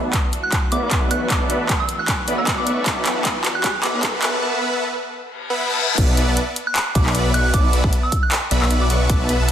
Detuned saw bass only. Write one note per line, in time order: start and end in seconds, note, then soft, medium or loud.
0.05 0.14 B1 medium
0.72 0.80 B1 loud
0.83 1.09 B1 loud
1.11 1.29 B1 medium
1.30 1.48 B1 medium
1.50 1.58 B1 loud
1.60 1.70 B1 medium
2.28 2.36 B1 medium
2.38 2.65 B1 loud
2.67 2.84 B1 loud
2.86 3.04 B1 loud
3.06 3.14 B1 loud
3.16 3.26 B1 medium
3.84 3.92 B1 medium
3.94 4.21 B1 loud
4.22 4.40 B1 loud
5.98 6.16 B1 loud
6.17 6.26 B1 loud
6.28 6.38 B1 medium
6.95 7.04 B1 medium
7.06 7.32 B1 loud
7.34 7.52 B1 loud
7.54 7.71 B1 loud
7.73 7.82 B1 loud
7.84 7.93 B1 loud
8.51 8.60 B1 loud
8.62 8.88 B1 loud
8.90 9.08 B1 medium
9.10 9.27 B1 loud
9.29 9.38 B1 loud
9.40 9.49 B1 medium